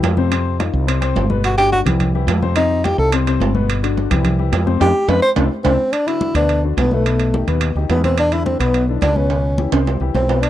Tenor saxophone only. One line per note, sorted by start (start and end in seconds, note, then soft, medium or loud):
1.45 1.57 F#4 medium
1.58 1.71 G4 loud
1.73 1.81 F#4 medium
2.56 2.86 D#4 medium
2.85 2.99 G4 medium
2.99 3.12 A4 loud
4.82 5.11 G4 loud
5.09 5.22 B4 medium
5.22 5.31 C5 loud
5.64 5.94 C4 loud
5.93 6.09 D4 medium
6.07 6.35 E4 medium
6.36 6.62 D4 medium
6.79 6.95 B3 medium
6.94 7.49 A3 medium
7.91 8.03 B3 medium
8.04 8.17 C4 medium
8.19 8.35 D4 medium
8.33 8.45 E4 medium
8.46 8.59 C4 medium
8.59 8.86 B3 medium
9.02 9.18 D4 medium
9.16 9.73 C#4 medium
10.15 10.44 C4 medium
10.42 10.50 D4 medium